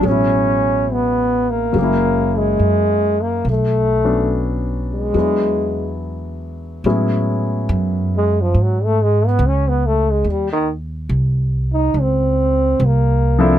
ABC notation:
X:1
M:4/4
L:1/16
Q:"Swing" 1/4=70
K:A
V:1 name="Grand piano"
[B,,F,G,CE]8 [F,G,^A,CE]8 | z2 [F,B,CD]6 [F,G,B,DE]8 | [F,G,B,CE]8- [F,G,B,CE]2 z6 | z12 z2 [^E,=CD=EA]2 |]
V:2 name="Trombone"
C4 B,2 _B,4 G,4 ^A,2 | A,4 z2 G,6 z4 | z6 G, =F, ^F, A, G, B, C B, A, G, | =G, ^D, z4 ^D2 =C4 ^A,4 |]
V:3 name="Upright bass" clef=bass
A,,,8 F,,,4 F,,4 | B,,,8 E,,8 | A,,4 F,,4 G,,4 C,,4 | ^D,,4 =C,,4 ^C,,4 =C,,4 |]